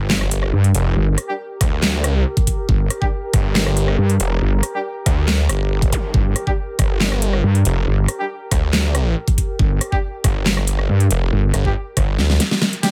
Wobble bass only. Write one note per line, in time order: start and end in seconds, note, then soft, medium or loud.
0.53 0.73 G2 loud
0.96 1.16 G1 loud
2.69 2.89 G1 loud
3.98 4.18 G2 loud
4.41 4.61 G1 loud
6.14 6.34 G1 loud
7.44 7.64 G2 loud
7.87 8.07 G1 loud
9.59 9.79 G1 loud
10.89 11.09 G2 loud
11.32 11.52 G1 loud